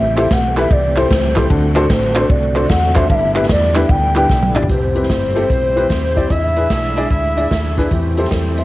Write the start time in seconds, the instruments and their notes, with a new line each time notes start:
Already playing: fingered electric bass A1, grand piano A2, tonewheel organ E3 A3 C4 G4, shakuhachi E5
0.17 grand piano E4 G4 A4 C5, shakuhachi E5, clap, ride
0.31 fingered electric bass B1, shakuhachi F#5, kick, snare, ride
0.56 grand piano E4 G4 A4 B4, shakuhachi E5, clap, ride
0.70 fingered electric bass C2, shakuhachi D5, kick, ride
0.96 grand piano E4 G4 A4 C5, shakuhachi C5, clap, ride
1.10 fingered electric bass C#2, kick, snare, ride
1.36 grand piano E4 G4 A4 C5, kick, snare, clap, ride
1.50 fingered electric bass D2, tonewheel organ D3 A3 F#4, grand piano D3, kick, ride
1.75 grand piano D4 F#4 A4 C5, clap, ride
1.90 fingered electric bass A1, shakuhachi C5, kick, snare, ride
2.15 grand piano D4 F#4 A4 C5, clap, ride
2.30 fingered electric bass C2, shakuhachi D5, kick, ride
2.55 grand piano D4 F#4 A4 C5, clap, ride
2.69 fingered electric bass E2, shakuhachi F#5, kick, snare, ride
2.95 grand piano D4 F#4 A4 C5, shakuhachi E5, kick, clap, ride
3.10 fingered electric bass G1, grand piano G2, tonewheel organ G3 B3 E4, shakuhachi F5, kick, ride
3.14 shakuhachi E5
3.34 grand piano D4 E4 G4 B4, shakuhachi E5, clap, ride
3.43 snare
3.49 fingered electric bass E2, shakuhachi D5, kick, snare, ride
3.75 grand piano D4 E4 G4 B4, shakuhachi E5, clap, ride
3.89 fingered electric bass D2, shakuhachi G5, kick, ride
4.15 grand piano D4 E4 G4 B4, shakuhachi G5, clap, ride
4.30 fingered electric bass B1, kick, snare
4.43 high tom
4.55 grand piano D4 E4 G4 D5, clap, mid tom
4.62 floor tom
4.69 fingered electric bass C2, grand piano C3, string section G3 C4 E4, tonewheel organ C4 E4 G4, shakuhachi B4, alto saxophone C5, kick, closed hi-hat
4.80 shakuhachi C5
4.95 grand piano C4 E4 G4 B4, closed hi-hat
5.03 snare
5.10 fingered electric bass G1, kick, snare, closed hi-hat
5.35 grand piano C4 E4 G4 A4, closed hi-hat
5.50 fingered electric bass B1, kick, closed hi-hat
5.76 grand piano C4 E4 G4 B4, closed hi-hat
5.90 fingered electric bass D#2, kick, snare, closed hi-hat
6.16 grand piano C4 E4 G4 D5, kick, snare, closed hi-hat
6.30 fingered electric bass E2, grand piano E3, string section G#3 D4, tonewheel organ D4 G#4, shakuhachi D#5, alto saxophone E5, kick, closed hi-hat
6.43 shakuhachi E5
6.56 grand piano D4 E4 G#4 B4, closed hi-hat
6.70 fingered electric bass B1, kick, snare, closed hi-hat
6.96 grand piano D4 E4 G#4 D5, closed hi-hat
7.11 fingered electric bass D2, alto saxophone E5, shakuhachi E5, kick, closed hi-hat
7.36 grand piano D4 E4 G#4 D5, closed hi-hat
7.51 fingered electric bass D#2, kick, snare, closed hi-hat
7.77 grand piano D4 E4 G#4 B4, kick, snare, closed hi-hat
7.91 fingered electric bass E2, grand piano E3, string section G3 A3 C4, tonewheel organ A3 C4 G4, kick, closed hi-hat
8.17 grand piano E4 G4 A4 C5, closed hi-hat
8.25 snare
8.31 fingered electric bass E2, grand piano A4 C5, kick, snare, closed hi-hat
8.57 grand piano C5 E5, closed hi-hat